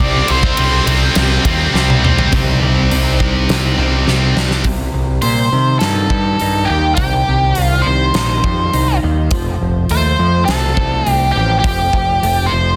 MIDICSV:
0, 0, Header, 1, 6, 480
1, 0, Start_track
1, 0, Tempo, 581959
1, 2, Time_signature, 4, 2, 24, 8
1, 10526, End_track
2, 0, Start_track
2, 0, Title_t, "Lead electric guitar"
2, 0, Program_c, 0, 29
2, 0, Note_on_c, 0, 74, 106
2, 246, Note_off_c, 0, 74, 0
2, 246, Note_on_c, 0, 72, 76
2, 687, Note_off_c, 0, 72, 0
2, 4304, Note_on_c, 0, 72, 82
2, 4772, Note_off_c, 0, 72, 0
2, 4776, Note_on_c, 0, 69, 78
2, 5485, Note_on_c, 0, 67, 69
2, 5528, Note_off_c, 0, 69, 0
2, 5722, Note_off_c, 0, 67, 0
2, 5732, Note_on_c, 0, 67, 72
2, 6276, Note_off_c, 0, 67, 0
2, 6276, Note_on_c, 0, 65, 72
2, 6448, Note_on_c, 0, 72, 81
2, 6487, Note_off_c, 0, 65, 0
2, 7392, Note_off_c, 0, 72, 0
2, 8177, Note_on_c, 0, 72, 89
2, 8618, Note_off_c, 0, 72, 0
2, 8621, Note_on_c, 0, 69, 79
2, 9165, Note_off_c, 0, 69, 0
2, 9165, Note_on_c, 0, 67, 79
2, 9334, Note_off_c, 0, 67, 0
2, 9334, Note_on_c, 0, 67, 78
2, 9550, Note_off_c, 0, 67, 0
2, 9560, Note_on_c, 0, 67, 77
2, 10281, Note_on_c, 0, 72, 77
2, 10327, Note_off_c, 0, 67, 0
2, 10526, Note_off_c, 0, 72, 0
2, 10526, End_track
3, 0, Start_track
3, 0, Title_t, "Clean electric guitar"
3, 0, Program_c, 1, 27
3, 1915, Note_on_c, 1, 48, 99
3, 1926, Note_on_c, 1, 55, 88
3, 1930, Note_on_c, 1, 60, 100
3, 1936, Note_on_c, 1, 63, 103
3, 1942, Note_on_c, 1, 67, 91
3, 2147, Note_off_c, 1, 55, 0
3, 2155, Note_off_c, 1, 60, 0
3, 2157, Note_on_c, 1, 55, 69
3, 2160, Note_off_c, 1, 63, 0
3, 2165, Note_on_c, 1, 60, 69
3, 2170, Note_off_c, 1, 67, 0
3, 2170, Note_on_c, 1, 63, 72
3, 2180, Note_on_c, 1, 67, 69
3, 2260, Note_off_c, 1, 67, 0
3, 2270, Note_on_c, 1, 67, 72
3, 2274, Note_off_c, 1, 63, 0
3, 2284, Note_on_c, 1, 63, 65
3, 2285, Note_off_c, 1, 60, 0
3, 2295, Note_on_c, 1, 60, 54
3, 2381, Note_off_c, 1, 48, 0
3, 2391, Note_off_c, 1, 55, 0
3, 2391, Note_on_c, 1, 48, 93
3, 2397, Note_off_c, 1, 60, 0
3, 2401, Note_off_c, 1, 63, 0
3, 2401, Note_on_c, 1, 55, 82
3, 2403, Note_off_c, 1, 67, 0
3, 2407, Note_on_c, 1, 60, 102
3, 2410, Note_on_c, 1, 63, 89
3, 2413, Note_on_c, 1, 67, 97
3, 2620, Note_off_c, 1, 55, 0
3, 2626, Note_off_c, 1, 60, 0
3, 2630, Note_on_c, 1, 55, 75
3, 2635, Note_off_c, 1, 63, 0
3, 2636, Note_on_c, 1, 60, 73
3, 2640, Note_off_c, 1, 67, 0
3, 2645, Note_on_c, 1, 63, 71
3, 2650, Note_on_c, 1, 67, 78
3, 2870, Note_off_c, 1, 48, 0
3, 2983, Note_off_c, 1, 67, 0
3, 2993, Note_on_c, 1, 67, 55
3, 2997, Note_off_c, 1, 63, 0
3, 3007, Note_off_c, 1, 60, 0
3, 3007, Note_on_c, 1, 63, 56
3, 3016, Note_on_c, 1, 60, 48
3, 3107, Note_off_c, 1, 55, 0
3, 3115, Note_off_c, 1, 60, 0
3, 3117, Note_on_c, 1, 55, 60
3, 3123, Note_off_c, 1, 63, 0
3, 3125, Note_on_c, 1, 60, 73
3, 3128, Note_off_c, 1, 67, 0
3, 3133, Note_on_c, 1, 63, 81
3, 3138, Note_on_c, 1, 67, 73
3, 3231, Note_off_c, 1, 67, 0
3, 3241, Note_off_c, 1, 63, 0
3, 3241, Note_on_c, 1, 67, 72
3, 3251, Note_on_c, 1, 63, 61
3, 3253, Note_off_c, 1, 60, 0
3, 3263, Note_on_c, 1, 60, 57
3, 3348, Note_off_c, 1, 55, 0
3, 3349, Note_on_c, 1, 48, 80
3, 3351, Note_off_c, 1, 60, 0
3, 3355, Note_off_c, 1, 63, 0
3, 3358, Note_off_c, 1, 67, 0
3, 3358, Note_on_c, 1, 55, 76
3, 3361, Note_on_c, 1, 60, 85
3, 3365, Note_on_c, 1, 63, 74
3, 3368, Note_on_c, 1, 67, 82
3, 3581, Note_off_c, 1, 55, 0
3, 3588, Note_off_c, 1, 60, 0
3, 3590, Note_on_c, 1, 55, 64
3, 3597, Note_off_c, 1, 63, 0
3, 3598, Note_on_c, 1, 60, 62
3, 3602, Note_off_c, 1, 67, 0
3, 3607, Note_on_c, 1, 63, 73
3, 3611, Note_on_c, 1, 67, 70
3, 3704, Note_off_c, 1, 67, 0
3, 3714, Note_off_c, 1, 63, 0
3, 3714, Note_on_c, 1, 67, 57
3, 3722, Note_off_c, 1, 60, 0
3, 3724, Note_on_c, 1, 63, 54
3, 3732, Note_on_c, 1, 60, 51
3, 3816, Note_off_c, 1, 48, 0
3, 3816, Note_off_c, 1, 55, 0
3, 3818, Note_off_c, 1, 67, 0
3, 3823, Note_off_c, 1, 63, 0
3, 3827, Note_off_c, 1, 60, 0
3, 3844, Note_on_c, 1, 48, 64
3, 4331, Note_on_c, 1, 55, 58
3, 4557, Note_on_c, 1, 51, 62
3, 4808, Note_on_c, 1, 63, 69
3, 5040, Note_off_c, 1, 48, 0
3, 5043, Note_off_c, 1, 55, 0
3, 5046, Note_on_c, 1, 55, 54
3, 5277, Note_off_c, 1, 63, 0
3, 5287, Note_on_c, 1, 63, 55
3, 5519, Note_off_c, 1, 51, 0
3, 5529, Note_on_c, 1, 51, 58
3, 5762, Note_on_c, 1, 48, 68
3, 6246, Note_off_c, 1, 55, 0
3, 6249, Note_on_c, 1, 55, 65
3, 6477, Note_off_c, 1, 51, 0
3, 6483, Note_off_c, 1, 63, 0
3, 6487, Note_on_c, 1, 51, 60
3, 6720, Note_on_c, 1, 63, 64
3, 6961, Note_off_c, 1, 55, 0
3, 6962, Note_off_c, 1, 48, 0
3, 6964, Note_on_c, 1, 55, 53
3, 7193, Note_off_c, 1, 63, 0
3, 7203, Note_on_c, 1, 63, 59
3, 7437, Note_off_c, 1, 51, 0
3, 7447, Note_on_c, 1, 51, 62
3, 7682, Note_off_c, 1, 63, 0
3, 7683, Note_off_c, 1, 51, 0
3, 7687, Note_on_c, 1, 53, 67
3, 7711, Note_off_c, 1, 55, 0
3, 8170, Note_on_c, 1, 57, 65
3, 8394, Note_off_c, 1, 53, 0
3, 8404, Note_on_c, 1, 53, 60
3, 8649, Note_on_c, 1, 60, 63
3, 8870, Note_off_c, 1, 57, 0
3, 8880, Note_on_c, 1, 57, 53
3, 9115, Note_off_c, 1, 60, 0
3, 9119, Note_on_c, 1, 60, 58
3, 9342, Note_off_c, 1, 53, 0
3, 9352, Note_on_c, 1, 53, 61
3, 9595, Note_off_c, 1, 53, 0
3, 9604, Note_on_c, 1, 53, 63
3, 10077, Note_off_c, 1, 57, 0
3, 10087, Note_on_c, 1, 57, 60
3, 10314, Note_off_c, 1, 53, 0
3, 10324, Note_on_c, 1, 53, 64
3, 10526, Note_off_c, 1, 53, 0
3, 10526, Note_off_c, 1, 57, 0
3, 10526, Note_off_c, 1, 60, 0
3, 10526, End_track
4, 0, Start_track
4, 0, Title_t, "Distorted electric guitar"
4, 0, Program_c, 2, 30
4, 0, Note_on_c, 2, 48, 116
4, 0, Note_on_c, 2, 55, 121
4, 1, Note_on_c, 2, 60, 123
4, 226, Note_off_c, 2, 48, 0
4, 234, Note_off_c, 2, 55, 0
4, 236, Note_on_c, 2, 48, 88
4, 238, Note_off_c, 2, 60, 0
4, 244, Note_on_c, 2, 55, 88
4, 248, Note_on_c, 2, 60, 112
4, 469, Note_off_c, 2, 48, 0
4, 475, Note_off_c, 2, 55, 0
4, 477, Note_off_c, 2, 60, 0
4, 479, Note_on_c, 2, 48, 76
4, 485, Note_on_c, 2, 55, 81
4, 487, Note_on_c, 2, 60, 84
4, 711, Note_off_c, 2, 48, 0
4, 717, Note_off_c, 2, 55, 0
4, 721, Note_on_c, 2, 48, 80
4, 725, Note_off_c, 2, 60, 0
4, 727, Note_on_c, 2, 55, 94
4, 734, Note_on_c, 2, 60, 78
4, 946, Note_off_c, 2, 48, 0
4, 956, Note_on_c, 2, 48, 95
4, 959, Note_off_c, 2, 55, 0
4, 966, Note_off_c, 2, 60, 0
4, 968, Note_on_c, 2, 55, 100
4, 976, Note_on_c, 2, 60, 104
4, 1186, Note_off_c, 2, 48, 0
4, 1191, Note_off_c, 2, 60, 0
4, 1194, Note_off_c, 2, 55, 0
4, 1196, Note_on_c, 2, 48, 91
4, 1201, Note_on_c, 2, 60, 103
4, 1204, Note_on_c, 2, 55, 84
4, 1428, Note_off_c, 2, 48, 0
4, 1437, Note_off_c, 2, 55, 0
4, 1438, Note_on_c, 2, 48, 91
4, 1442, Note_off_c, 2, 60, 0
4, 1447, Note_on_c, 2, 55, 80
4, 1452, Note_on_c, 2, 60, 73
4, 1665, Note_off_c, 2, 48, 0
4, 1670, Note_off_c, 2, 55, 0
4, 1673, Note_off_c, 2, 60, 0
4, 1675, Note_on_c, 2, 48, 87
4, 1680, Note_on_c, 2, 55, 104
4, 1683, Note_on_c, 2, 60, 99
4, 1899, Note_off_c, 2, 48, 0
4, 1901, Note_off_c, 2, 55, 0
4, 1903, Note_off_c, 2, 60, 0
4, 1911, Note_on_c, 2, 48, 94
4, 1924, Note_on_c, 2, 55, 95
4, 1935, Note_on_c, 2, 60, 97
4, 3095, Note_off_c, 2, 48, 0
4, 3102, Note_off_c, 2, 55, 0
4, 3105, Note_off_c, 2, 60, 0
4, 3115, Note_on_c, 2, 60, 72
4, 3130, Note_on_c, 2, 55, 66
4, 3140, Note_on_c, 2, 48, 58
4, 3338, Note_off_c, 2, 60, 0
4, 3344, Note_off_c, 2, 48, 0
4, 3346, Note_off_c, 2, 55, 0
4, 3354, Note_on_c, 2, 48, 58
4, 3371, Note_on_c, 2, 55, 67
4, 3390, Note_on_c, 2, 60, 65
4, 3818, Note_off_c, 2, 48, 0
4, 3827, Note_off_c, 2, 55, 0
4, 3836, Note_off_c, 2, 60, 0
4, 10526, End_track
5, 0, Start_track
5, 0, Title_t, "Picked electric bass"
5, 0, Program_c, 3, 34
5, 0, Note_on_c, 3, 36, 101
5, 176, Note_off_c, 3, 36, 0
5, 248, Note_on_c, 3, 36, 98
5, 422, Note_off_c, 3, 36, 0
5, 484, Note_on_c, 3, 36, 92
5, 659, Note_off_c, 3, 36, 0
5, 716, Note_on_c, 3, 36, 91
5, 893, Note_off_c, 3, 36, 0
5, 958, Note_on_c, 3, 36, 91
5, 1135, Note_off_c, 3, 36, 0
5, 1196, Note_on_c, 3, 39, 99
5, 1372, Note_off_c, 3, 39, 0
5, 1433, Note_on_c, 3, 36, 86
5, 1787, Note_off_c, 3, 36, 0
5, 1920, Note_on_c, 3, 36, 82
5, 2140, Note_off_c, 3, 36, 0
5, 2167, Note_on_c, 3, 36, 84
5, 2383, Note_off_c, 3, 36, 0
5, 2406, Note_on_c, 3, 36, 88
5, 2623, Note_off_c, 3, 36, 0
5, 2644, Note_on_c, 3, 36, 75
5, 2861, Note_off_c, 3, 36, 0
5, 2879, Note_on_c, 3, 36, 76
5, 3099, Note_off_c, 3, 36, 0
5, 3117, Note_on_c, 3, 36, 82
5, 3338, Note_off_c, 3, 36, 0
5, 3361, Note_on_c, 3, 36, 78
5, 3580, Note_off_c, 3, 36, 0
5, 3596, Note_on_c, 3, 36, 78
5, 3817, Note_off_c, 3, 36, 0
5, 3833, Note_on_c, 3, 36, 82
5, 4034, Note_off_c, 3, 36, 0
5, 4074, Note_on_c, 3, 36, 72
5, 4275, Note_off_c, 3, 36, 0
5, 4312, Note_on_c, 3, 46, 77
5, 4513, Note_off_c, 3, 46, 0
5, 4557, Note_on_c, 3, 48, 65
5, 4757, Note_off_c, 3, 48, 0
5, 4799, Note_on_c, 3, 43, 63
5, 4998, Note_off_c, 3, 43, 0
5, 5038, Note_on_c, 3, 43, 79
5, 5238, Note_off_c, 3, 43, 0
5, 5289, Note_on_c, 3, 43, 75
5, 5485, Note_off_c, 3, 43, 0
5, 5526, Note_on_c, 3, 39, 77
5, 5723, Note_off_c, 3, 39, 0
5, 5756, Note_on_c, 3, 36, 79
5, 5958, Note_off_c, 3, 36, 0
5, 6008, Note_on_c, 3, 36, 69
5, 6205, Note_off_c, 3, 36, 0
5, 6249, Note_on_c, 3, 36, 67
5, 6446, Note_off_c, 3, 36, 0
5, 6486, Note_on_c, 3, 36, 64
5, 6684, Note_off_c, 3, 36, 0
5, 6718, Note_on_c, 3, 34, 72
5, 6920, Note_off_c, 3, 34, 0
5, 6965, Note_on_c, 3, 41, 82
5, 7164, Note_off_c, 3, 41, 0
5, 7203, Note_on_c, 3, 36, 80
5, 7404, Note_off_c, 3, 36, 0
5, 7453, Note_on_c, 3, 39, 80
5, 7650, Note_off_c, 3, 39, 0
5, 7681, Note_on_c, 3, 29, 83
5, 7883, Note_off_c, 3, 29, 0
5, 7925, Note_on_c, 3, 29, 70
5, 8125, Note_off_c, 3, 29, 0
5, 8169, Note_on_c, 3, 39, 82
5, 8368, Note_off_c, 3, 39, 0
5, 8404, Note_on_c, 3, 41, 73
5, 8605, Note_off_c, 3, 41, 0
5, 8644, Note_on_c, 3, 36, 75
5, 8846, Note_off_c, 3, 36, 0
5, 8885, Note_on_c, 3, 36, 83
5, 9086, Note_off_c, 3, 36, 0
5, 9127, Note_on_c, 3, 36, 67
5, 9328, Note_off_c, 3, 36, 0
5, 9367, Note_on_c, 3, 33, 69
5, 9568, Note_off_c, 3, 33, 0
5, 9605, Note_on_c, 3, 29, 81
5, 9807, Note_off_c, 3, 29, 0
5, 9844, Note_on_c, 3, 29, 70
5, 10047, Note_off_c, 3, 29, 0
5, 10085, Note_on_c, 3, 29, 72
5, 10288, Note_off_c, 3, 29, 0
5, 10328, Note_on_c, 3, 29, 77
5, 10526, Note_off_c, 3, 29, 0
5, 10526, End_track
6, 0, Start_track
6, 0, Title_t, "Drums"
6, 0, Note_on_c, 9, 36, 118
6, 79, Note_off_c, 9, 36, 0
6, 232, Note_on_c, 9, 51, 80
6, 314, Note_off_c, 9, 51, 0
6, 355, Note_on_c, 9, 36, 101
6, 438, Note_off_c, 9, 36, 0
6, 471, Note_on_c, 9, 51, 125
6, 554, Note_off_c, 9, 51, 0
6, 720, Note_on_c, 9, 51, 83
6, 802, Note_off_c, 9, 51, 0
6, 951, Note_on_c, 9, 51, 110
6, 958, Note_on_c, 9, 38, 108
6, 1033, Note_off_c, 9, 51, 0
6, 1040, Note_off_c, 9, 38, 0
6, 1195, Note_on_c, 9, 36, 86
6, 1196, Note_on_c, 9, 51, 83
6, 1278, Note_off_c, 9, 36, 0
6, 1279, Note_off_c, 9, 51, 0
6, 1446, Note_on_c, 9, 38, 69
6, 1528, Note_off_c, 9, 38, 0
6, 1567, Note_on_c, 9, 48, 77
6, 1650, Note_off_c, 9, 48, 0
6, 1687, Note_on_c, 9, 45, 94
6, 1769, Note_off_c, 9, 45, 0
6, 1802, Note_on_c, 9, 43, 101
6, 1885, Note_off_c, 9, 43, 0
6, 1916, Note_on_c, 9, 46, 46
6, 1919, Note_on_c, 9, 36, 105
6, 1998, Note_off_c, 9, 46, 0
6, 2001, Note_off_c, 9, 36, 0
6, 2404, Note_on_c, 9, 46, 47
6, 2486, Note_off_c, 9, 46, 0
6, 2641, Note_on_c, 9, 36, 80
6, 2723, Note_off_c, 9, 36, 0
6, 2881, Note_on_c, 9, 46, 42
6, 2887, Note_on_c, 9, 38, 90
6, 2963, Note_off_c, 9, 46, 0
6, 2970, Note_off_c, 9, 38, 0
6, 3362, Note_on_c, 9, 38, 52
6, 3444, Note_off_c, 9, 38, 0
6, 3603, Note_on_c, 9, 38, 77
6, 3685, Note_off_c, 9, 38, 0
6, 3718, Note_on_c, 9, 38, 68
6, 3801, Note_off_c, 9, 38, 0
6, 3829, Note_on_c, 9, 46, 47
6, 3832, Note_on_c, 9, 36, 87
6, 3911, Note_off_c, 9, 46, 0
6, 3914, Note_off_c, 9, 36, 0
6, 4304, Note_on_c, 9, 46, 47
6, 4386, Note_off_c, 9, 46, 0
6, 4788, Note_on_c, 9, 46, 37
6, 4795, Note_on_c, 9, 38, 81
6, 4871, Note_off_c, 9, 46, 0
6, 4877, Note_off_c, 9, 38, 0
6, 5032, Note_on_c, 9, 36, 69
6, 5115, Note_off_c, 9, 36, 0
6, 5275, Note_on_c, 9, 46, 37
6, 5357, Note_off_c, 9, 46, 0
6, 5747, Note_on_c, 9, 46, 39
6, 5753, Note_on_c, 9, 36, 92
6, 5830, Note_off_c, 9, 46, 0
6, 5835, Note_off_c, 9, 36, 0
6, 6229, Note_on_c, 9, 46, 43
6, 6312, Note_off_c, 9, 46, 0
6, 6715, Note_on_c, 9, 46, 42
6, 6721, Note_on_c, 9, 38, 86
6, 6797, Note_off_c, 9, 46, 0
6, 6804, Note_off_c, 9, 38, 0
6, 6960, Note_on_c, 9, 36, 75
6, 7042, Note_off_c, 9, 36, 0
6, 7205, Note_on_c, 9, 46, 45
6, 7287, Note_off_c, 9, 46, 0
6, 7676, Note_on_c, 9, 46, 44
6, 7681, Note_on_c, 9, 36, 98
6, 7759, Note_off_c, 9, 46, 0
6, 7763, Note_off_c, 9, 36, 0
6, 8161, Note_on_c, 9, 46, 44
6, 8243, Note_off_c, 9, 46, 0
6, 8643, Note_on_c, 9, 46, 42
6, 8649, Note_on_c, 9, 38, 97
6, 8725, Note_off_c, 9, 46, 0
6, 8732, Note_off_c, 9, 38, 0
6, 8883, Note_on_c, 9, 36, 69
6, 8966, Note_off_c, 9, 36, 0
6, 9127, Note_on_c, 9, 46, 44
6, 9209, Note_off_c, 9, 46, 0
6, 9602, Note_on_c, 9, 36, 90
6, 9602, Note_on_c, 9, 46, 39
6, 9684, Note_off_c, 9, 36, 0
6, 9685, Note_off_c, 9, 46, 0
6, 9842, Note_on_c, 9, 36, 66
6, 9924, Note_off_c, 9, 36, 0
6, 10090, Note_on_c, 9, 46, 46
6, 10173, Note_off_c, 9, 46, 0
6, 10526, End_track
0, 0, End_of_file